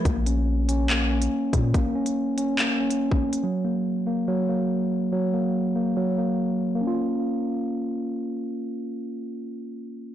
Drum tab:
HH |x-x---x-x--x--x-|x--x--x-x--x---x|----------------|----------------|
CP |--------x-------|--------x-------|----------------|----------------|
BD |o-------------o-|o------------o--|----------------|----------------|

HH |----------------|----------------|
CP |----------------|----------------|
BD |----------------|----------------|